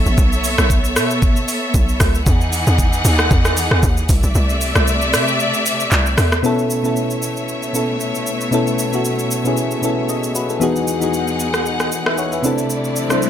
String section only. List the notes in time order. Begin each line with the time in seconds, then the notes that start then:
Already playing: B3 A4 C#5 E5
2.27 E3 D#4 G#4 F#5
4.09 C3 A3 D5 E5
6.44 B2 A3 C#5 E5
10.61 E2 D#4 G#4 F#5
12.44 C3 A3 E4 D5